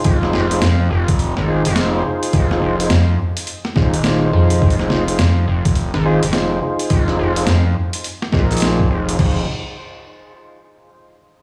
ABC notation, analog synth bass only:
X:1
M:4/4
L:1/16
Q:"Swing 16ths" 1/4=105
K:Fm
V:1 name="Analog synth bass" clef=bass
F,,,2 F,,,2 F,,2 F,,,3 A,,,2 F,,,3 z2 | F,,,2 F,,,2 F,,2 z4 E,,,4 F,,2 | F,,,2 F,,,2 F,,2 F,,,3 A,,,2 F,,,3 z2 | F,,,2 F,,,2 F,,2 z4 B,,,4 F,,,2 |
F,,,2 z12 z2 |]